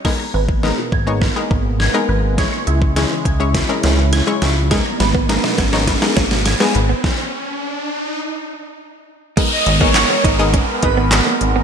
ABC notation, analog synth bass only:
X:1
M:4/4
L:1/8
Q:1/4=103
K:G#m
V:1 name="Analog synth bass" clef=bass
z G,,,2 G,,,2 G,,,2 G,,,- | G,,, C,,2 C,,2 C,,2 C,,- | C,, G,,,2 G,,,2 G,,,2 G,,, | z8 |
z G,,,2 G,,,2 G,,,2 G,,, |]